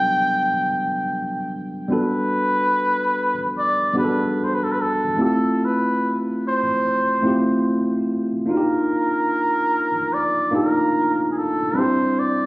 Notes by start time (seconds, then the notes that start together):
Already playing: F#3 G3 B3 D4 F#4 A4 B4 G5
1.88 G3 B3 D4 F#4
1.92 A4 B4
3.58 D5
3.93 G3 B3 D4 F#4
3.98 G#4 B4
4.04 A4
4.44 C5
4.54 B4
4.64 A4
4.72 B4
4.81 A4
5.17 A3 C4 E4 F4
5.22 G4 A4
5.65 B4
6.47 C5
7.22 A3 C4 E4 F4
7.27 G4
8.46 A#3 D4 D#4 F4
8.50 F#4 A#4
8.57 G4
10.14 D5
10.51 A#3 D4 D#4 F4
10.55 G4 A#4
11.32 G#4
11.38 A4
11.73 G3 C4 D4 E4
11.78 G4 C5
12.19 D5